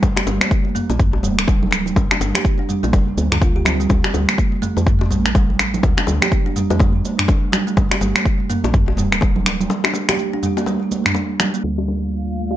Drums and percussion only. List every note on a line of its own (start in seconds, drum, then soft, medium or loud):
0.03 kick loud
0.03 low bongo loud
0.03 shaker soft
0.16 finger snap medium
0.16 high bongo loud
0.16 high conga medium
0.27 low bongo loud
0.27 shaker loud
0.41 finger snap medium
0.41 high conga loud
0.41 shaker medium
0.51 kick loud
0.51 shaker soft
0.65 high conga medium
0.75 mid tom medium
0.75 shaker loud
0.90 high bongo medium
0.90 shaker medium
0.99 kick loud
0.99 mid tom medium
0.99 shaker soft
1.13 high bongo medium
1.23 mid tom medium
1.23 high conga loud
1.23 shaker loud
1.39 finger snap medium
1.39 low bongo medium
1.39 shaker medium
1.48 kick loud
1.48 low bongo loud
1.48 shaker soft
1.63 low conga loud
1.71 finger snap medium
1.71 low bongo medium
1.71 shaker medium
1.86 low conga loud
1.86 shaker medium
1.96 kick loud
1.96 low bongo medium
1.96 shaker soft
2.11 finger snap medium
2.11 high bongo loud
2.11 high conga medium
2.21 low bongo loud
2.21 shaker loud
2.34 finger snap medium
2.34 high conga loud
2.34 low conga medium
2.34 shaker medium
2.45 kick loud
2.45 shaker soft
2.58 high conga medium
2.69 mid tom medium
2.69 shaker loud
2.84 high bongo medium
2.84 shaker medium
2.93 kick loud
2.93 low bongo medium
2.93 high conga medium
2.93 shaker soft
3.18 high conga loud
3.18 shaker medium
3.32 finger snap medium
3.32 mid tom medium
3.32 shaker soft
3.42 kick loud
3.42 low bongo medium
3.42 shaker soft
3.65 finger snap medium
3.65 high bongo medium
3.65 low conga loud
3.65 shaker medium
3.81 shaker medium
3.90 kick loud
3.90 low bongo medium
3.90 shaker soft
4.04 finger snap medium
4.04 high bongo loud
4.04 high conga medium
4.14 low bongo medium
4.14 shaker medium
4.29 finger snap medium
4.29 high conga loud
4.29 shaker medium
4.38 kick loud
4.38 shaker soft
4.52 high conga medium
4.63 mid tom medium
4.63 shaker loud
4.77 high bongo medium
4.77 shaker medium
4.87 kick loud
4.87 mid tom medium
4.87 shaker soft
5.01 high bongo medium
5.11 mid tom medium
5.11 high conga loud
5.11 shaker medium
5.25 finger snap medium
5.25 low bongo medium
5.25 shaker medium
5.35 kick loud
5.35 low bongo medium
5.35 shaker soft
5.50 low conga medium
5.59 finger snap medium
5.59 low bongo medium
5.59 shaker medium
5.74 low conga loud
5.74 shaker medium
5.83 kick loud
5.83 low bongo medium
5.83 shaker soft
5.97 finger snap medium
5.97 high bongo loud
5.97 high conga medium
6.07 low bongo medium
6.07 shaker medium
6.22 finger snap medium
6.22 high conga medium
6.22 low conga medium
6.22 shaker medium
6.32 kick loud
6.32 shaker soft
6.47 high conga medium
6.56 mid tom medium
6.56 shaker medium
6.70 high bongo medium
6.70 shaker soft
6.79 kick loud
6.79 low bongo medium
6.79 high conga medium
6.79 shaker soft
7.05 high conga loud
7.05 shaker medium
7.19 finger snap medium
7.19 mid tom medium
7.19 shaker soft
7.28 kick loud
7.28 low bongo medium
7.28 shaker soft
7.53 finger snap medium
7.53 high bongo medium
7.53 low conga medium
7.53 shaker medium
7.68 shaker soft
7.77 kick loud
7.77 low bongo medium
7.77 shaker soft
7.91 finger snap medium
7.91 high bongo loud
7.91 high conga medium
8.01 low bongo medium
8.01 shaker medium
8.15 finger snap medium
8.15 high conga medium
8.15 shaker soft
8.25 kick loud
8.25 shaker soft
8.40 high conga medium
8.50 mid tom medium
8.50 shaker medium
8.64 high bongo medium
8.64 shaker medium
8.74 kick loud
8.74 mid tom medium
8.74 shaker soft
8.88 high bongo medium
8.97 mid tom medium
8.97 high conga loud
8.97 shaker medium
9.12 finger snap medium
9.12 low bongo medium
9.12 shaker soft
9.21 kick loud
9.21 low bongo medium
9.21 shaker soft
9.36 low conga loud
9.46 finger snap medium
9.46 low bongo medium
9.46 shaker medium
9.60 low conga loud
9.60 shaker medium
9.70 low bongo medium
9.70 shaker soft
9.84 finger snap medium
9.84 high bongo loud
9.84 high conga medium
9.94 low bongo medium
9.94 shaker medium
10.09 finger snap loud
10.09 high bongo medium
10.09 high conga loud
10.09 low conga medium
10.09 shaker soft
10.19 shaker soft
10.34 high conga medium
10.43 mid tom medium
10.43 shaker medium
10.57 high bongo medium
10.57 shaker medium
10.66 low bongo medium
10.66 high conga medium
10.66 shaker soft
10.91 high conga loud
10.91 shaker medium
11.06 finger snap medium
11.06 mid tom medium
11.06 shaker soft
11.15 low bongo medium
11.15 shaker soft
11.40 finger snap medium
11.40 high bongo medium
11.40 high conga medium
11.40 low conga loud
11.40 shaker medium
11.54 shaker medium
11.64 low bongo medium
11.78 high bongo medium
11.88 low bongo medium
12.51 high bongo medium